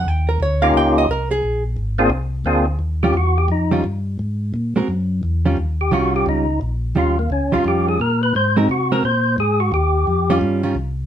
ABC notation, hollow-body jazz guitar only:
X:1
M:4/4
L:1/8
Q:"Swing" 1/4=174
K:Ebmix
V:1 name="Hollow-body jazz guitar"
g B d f g e B A- | A z6 z | z [E,G,DF] z3 [E,G,DF] z2 | z3 [A,C_GB] z3 [E,=G,DF] |
z2 [E,G,DF]3 z3 | [E,G,DF] z2 [E,G,DF]3 z2 | z [A,C_GB] z [A,CGB] z4 | z3 [E,G,DF]2 [E,G,DF] z2 |]